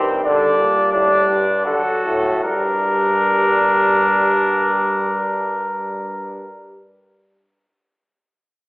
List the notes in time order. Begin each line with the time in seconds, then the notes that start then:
Already playing: G2 D#3 C4
0.24 D3 G3 D4 D5
0.59 A#2
0.92 A2 D4 D5
1.29 G2
1.65 D3 F#3 F#4 A4
2.04 A2
2.43 G2 G3 D4 A#4